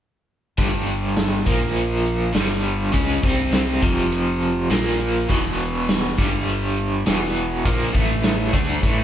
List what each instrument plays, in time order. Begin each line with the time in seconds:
0.58 fingered electric bass G1, overdriven electric guitar G2 D3 G3, kick, closed hi-hat
0.87 closed hi-hat
1.17 snare, closed hi-hat
1.46 fingered electric bass A#1, overdriven electric guitar A#2 F3 A#3, kick, closed hi-hat
1.76 closed hi-hat
2.06 closed hi-hat
2.33 fingered electric bass G1, overdriven electric guitar G2 D3 G3, snare, closed hi-hat
2.64 closed hi-hat
2.92 fingered electric bass C#2, overdriven electric guitar C#3 G#3 C#4, kick, closed hi-hat
3.23 fingered electric bass C2, overdriven electric guitar C3 G3 C4, kick, closed hi-hat
3.52 snare, closed hi-hat
3.82 fingered electric bass F1, overdriven electric guitar F2 C3 F3, kick, closed hi-hat
4.12 closed hi-hat
4.42 closed hi-hat
4.70 fingered electric bass A#1, overdriven electric guitar A#2 F3 A#3, snare, closed hi-hat
5.00 closed hi-hat
5.29 fingered electric bass E1, overdriven electric guitar E2 B2 E3, kick, closed hi-hat
5.59 closed hi-hat
5.89 snare, closed hi-hat
6.18 fingered electric bass G1, overdriven electric guitar G2 D3 G3, kick, closed hi-hat
6.48 closed hi-hat
6.77 closed hi-hat
7.06 fingered electric bass E1, overdriven electric guitar E2 B2 E3, snare, closed hi-hat
7.36 closed hi-hat
7.65 fingered electric bass A#1, overdriven electric guitar A#2 F3 A#3, kick, closed hi-hat
7.93 fingered electric bass A1, overdriven electric guitar A2 E3 A3, kick, closed hi-hat
8.24 snare, closed hi-hat
8.53 fingered electric bass D2, overdriven electric guitar D3 A3 D4, kick, closed hi-hat
8.69 snare
8.82 fingered electric bass A1, overdriven electric guitar A2 E3 A3, kick, closed hi-hat